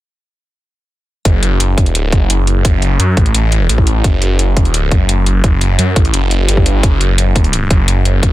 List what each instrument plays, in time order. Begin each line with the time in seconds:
1.25 detuned saw bass F#1, kick, closed hi-hat
1.43 closed hi-hat
1.60 closed hi-hat
1.78 kick, closed hi-hat
1.86 closed hi-hat
1.95 closed hi-hat
2.12 detuned saw bass F#1, kick, closed hi-hat
2.30 closed hi-hat
2.47 closed hi-hat
2.65 detuned saw bass F#1, kick, closed hi-hat
2.82 closed hi-hat
3.00 detuned saw bass F#2, closed hi-hat
3.17 detuned saw bass A1, kick, closed hi-hat
3.26 closed hi-hat
3.34 detuned saw bass A1, closed hi-hat
3.52 closed hi-hat
3.69 detuned saw bass A1, closed hi-hat
3.78 kick
3.87 detuned saw bass A1, closed hi-hat
4.04 detuned saw bass F#1, kick, closed hi-hat
4.22 closed hi-hat
4.39 closed hi-hat
4.57 kick, closed hi-hat
4.65 closed hi-hat
4.74 closed hi-hat
4.91 detuned saw bass F#1, kick, closed hi-hat
5.09 closed hi-hat
5.26 closed hi-hat
5.44 detuned saw bass F#1, kick, closed hi-hat
5.61 closed hi-hat
5.79 detuned saw bass F#2, closed hi-hat
5.96 detuned saw bass A1, kick, closed hi-hat
6.05 closed hi-hat
6.14 detuned saw bass F#1, closed hi-hat
6.31 closed hi-hat
6.48 detuned saw bass G1, closed hi-hat
6.57 kick
6.66 closed hi-hat
6.83 detuned saw bass F#1, kick, closed hi-hat
7.01 closed hi-hat
7.18 closed hi-hat
7.36 kick, closed hi-hat
7.44 closed hi-hat
7.53 closed hi-hat
7.71 detuned saw bass F#1, kick, closed hi-hat
7.88 closed hi-hat
8.05 closed hi-hat
8.23 detuned saw bass F#1, kick, closed hi-hat